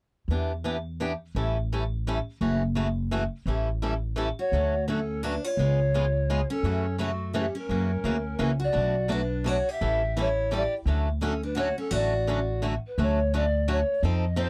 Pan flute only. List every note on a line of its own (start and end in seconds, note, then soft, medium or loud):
4.39 4.84 C#5 medium
4.89 5.25 A4 medium
5.24 5.45 B4 medium
5.44 6.49 C#5 medium
6.51 6.96 A4 medium
7.01 7.33 F#4 medium
7.38 7.59 G4 medium
7.58 8.41 A#4 medium
8.64 9.14 D5 medium
9.13 9.50 B4 medium
9.49 9.72 C#5 medium
9.71 10.18 E5 loud
10.20 10.57 C#5 medium
10.55 10.74 D5 medium
11.23 11.42 A4 medium
11.45 11.57 B4 medium
11.57 11.77 C#5 medium
11.79 11.95 A4 medium
11.93 12.63 D5 medium
12.87 13.04 B4 medium
13.02 13.35 C#5 medium
13.35 13.72 D5 medium
13.71 14.04 C#5 medium
14.06 14.43 D#5 medium
14.41 14.49 C5 medium